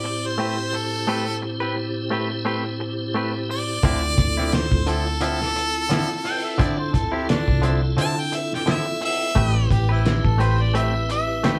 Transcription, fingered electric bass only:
3.83 4.15 D2 loud
4.18 4.68 D2 medium
4.72 6.06 D2 medium
6.60 6.94 D3 loud
6.94 7.44 D2 medium
7.48 7.94 C2 medium
7.97 9.32 D3 medium
9.36 9.67 A1 loud
9.71 10.21 A1 medium
10.25 11.59 A1 medium

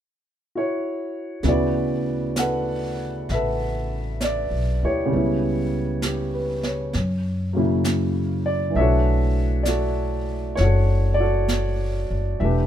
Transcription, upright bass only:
1.44 3.24 D2 medium
3.29 4.47 A1 medium
4.51 4.79 B1 soft
4.83 5.10 D2 medium
5.13 6.90 C#2 medium
6.94 8.71 F#2 medium
8.75 10.53 B1 medium
10.58 12.05 F#1 medium
12.10 12.38 F#1 medium
12.41 12.67 E1 medium

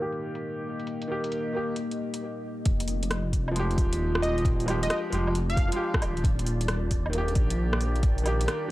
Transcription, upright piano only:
0.00 1.06 D#3 medium
0.00 1.08 A#3 medium
0.00 1.10 G4 medium
1.08 1.51 D#3 medium
1.08 1.52 A#3 medium
1.08 1.53 G4 medium
1.53 1.73 D#3 medium
1.53 1.74 A#3 medium
1.53 1.75 G4 medium
3.51 4.64 F3 medium
3.56 4.66 G#3 medium
3.56 4.68 G4 medium
4.66 5.09 F3 medium
4.66 5.11 G#3 medium
4.70 5.12 G4 loud
5.10 5.31 F3 medium
5.10 5.32 G#3 medium
5.10 5.33 G4 loud
5.68 6.21 F3 medium
5.72 6.23 G#3 medium
5.76 6.25 G4 loud
7.10 8.22 D#3 medium
7.14 8.24 A#3 medium
7.18 8.26 G4 loud
8.23 8.67 D#3 medium
8.23 8.68 A#3 medium
8.23 8.69 G4 medium
8.68 8.71 D#3 medium

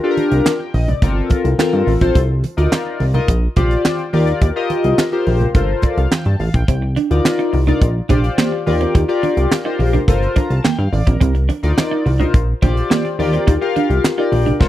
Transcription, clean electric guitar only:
6.68 6.79 C4 medium
6.82 muted clean electric guitar stroke soft
6.96 7.08 D4 medium
7.39 7.50 D#4 medium
7.53 muted clean electric guitar stroke soft
7.67 7.78 D4 medium
8.09 8.21 D4 medium
8.38 8.49 A#3 medium
8.52 muted clean electric guitar stroke soft
8.81 8.92 C4 medium
8.95 9.06 D#4 medium
9.09 muted clean electric guitar stroke soft
9.23 9.34 D4 medium
9.65 9.76 D#4 medium
9.79 muted clean electric guitar stroke soft
9.93 10.05 D4 medium
10.36 10.47 D4 medium
10.64 10.76 A#3 medium
10.79 muted clean electric guitar stroke soft
11.07 11.18 C4 medium
11.21 11.32 C4 medium
11.35 muted clean electric guitar stroke soft
11.49 11.60 D4 medium
11.91 12.03 D#4 medium
12.06 muted clean electric guitar stroke soft
12.20 12.31 D4 medium
12.62 12.74 D4 medium
12.90 13.02 A#3 medium
13.05 muted clean electric guitar stroke soft
13.33 13.44 C4 medium
13.47 13.58 D#4 medium
13.62 muted clean electric guitar stroke soft
13.76 13.87 D4 medium
14.18 14.29 D#4 medium
14.32 muted clean electric guitar stroke soft
14.46 14.58 D4 medium

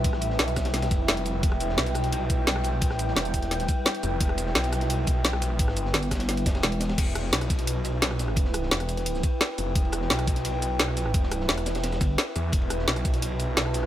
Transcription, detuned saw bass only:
0.00 0.24 A#1 loud
0.24 0.38 A1 loud
0.39 0.90 B1 loud
0.91 1.42 F1 loud
1.43 1.76 E1 loud
1.78 2.75 B1 loud
2.75 3.02 A#1 loud
3.02 3.15 A1 loud
3.16 3.67 E1 loud
4.03 4.19 F1 loud
4.21 4.54 E1 loud
4.55 5.54 B1 loud
5.54 5.76 A1 loud
5.76 5.93 G1 loud
6.46 6.62 F1 loud
6.98 7.31 E1 loud
7.33 8.70 B1 loud
8.71 9.22 E1 loud
9.58 9.74 F1 loud
9.75 10.09 E1 loud
10.10 11.47 B1 loud
11.49 12.00 E1 loud
12.36 12.52 E2 loud
12.53 12.86 E1 loud
12.88 13.86 B1 loud

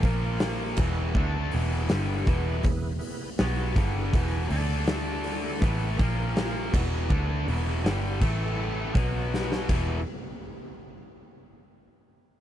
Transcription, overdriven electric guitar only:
0.05 0.78 A#2 medium
0.05 0.79 F3 loud
0.05 0.79 A#3 loud
0.79 1.15 E2 medium
0.79 1.16 B2 medium
0.79 1.16 E3 loud
1.16 1.52 D3 medium
1.16 1.53 A3 loud
1.16 1.53 D4 loud
1.53 1.89 E2 medium
1.53 1.90 B2 medium
1.53 1.90 E3 loud
1.90 2.26 G2 medium
1.90 2.27 D3 medium
1.90 2.27 G3 loud
2.27 2.63 E2 medium
2.27 2.64 B2 medium
2.27 2.64 E3 loud
2.66 2.95 E2 medium
2.66 2.95 B2 medium
3.40 3.76 B2 medium
3.40 3.76 F#3 medium
3.40 3.76 B3 loud
3.77 4.13 G2 medium
3.77 4.13 D3 medium
3.77 4.13 G3 loud
4.14 4.50 E2 medium
4.14 4.51 B2 medium
4.14 4.51 E3 loud
4.51 5.61 D3 loud
4.51 5.61 A3 medium
4.51 5.61 D4 loud
5.63 5.98 A2 loud
5.63 5.98 E3 medium
5.63 5.99 A3 loud
5.98 6.72 A#2 medium
5.98 6.72 F3 loud
5.98 6.72 A#3 loud
6.74 7.10 E2 medium
6.74 7.09 B2 medium
6.74 7.09 E3 loud
7.09 7.46 D3 medium
7.09 7.46 A3 loud
7.09 7.46 D4 loud
7.48 7.84 E2 medium
7.48 7.84 B2 loud
7.48 7.84 E3 loud
7.84 8.20 G2 medium
7.84 8.20 D3 medium
7.84 8.20 G3 medium
8.22 8.96 A2 medium
8.22 8.96 E3 loud
8.22 8.96 A3 loud
8.96 9.68 B2 medium
8.96 9.68 F#3 medium
8.96 9.68 B3 loud
9.69 9.99 E2 medium
9.69 9.99 B2 medium
9.69 10.00 E3 loud

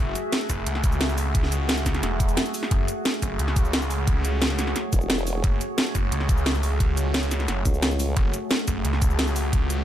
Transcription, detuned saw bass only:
0.00 0.14 F#1 loud
0.50 0.65 F#1 loud
0.67 2.02 C#2 loud
2.03 2.37 E1 loud
2.71 2.87 F#1 loud
3.22 3.38 F#1 loud
3.39 4.74 C#2 loud
5.44 5.60 F#1 loud
5.95 6.11 F#1 loud
6.12 7.47 C#2 loud
7.48 7.64 F#1 loud
8.17 8.32 F#1 loud
8.68 8.83 F#1 loud
8.85 9.84 C#2 loud

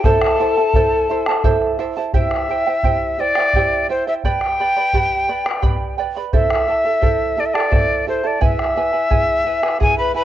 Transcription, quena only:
0.04 1.79 A5 medium
2.15 3.22 E5 medium
3.20 3.90 D5 medium
3.90 4.06 C5 medium
4.08 4.14 E5 medium
4.25 5.95 G5 loud
6.35 7.41 E5 medium
7.40 7.47 D5 medium
7.46 7.55 E5 medium
7.54 8.08 D5 medium
8.09 8.28 C5 medium
8.27 8.43 D5 medium
8.44 9.78 E5 medium
9.82 9.98 G#5 medium
9.98 10.14 B5 medium
10.15 10.24 B5 medium

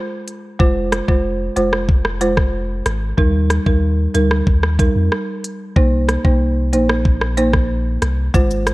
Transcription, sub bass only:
0.60 1.01 F1 loud
1.08 1.49 F1 loud
1.57 2.82 F1 medium
2.86 3.13 G#1 medium
3.18 3.59 D#2 loud
3.66 4.07 D#2 medium
4.15 4.42 D2 medium
4.47 4.88 D#2 loud
4.95 5.09 F2 medium
5.76 6.17 C2 loud
6.25 6.74 C2 loud
6.73 7.98 A#1 medium
8.02 8.29 C2 loud
8.34 8.74 G#1 loud

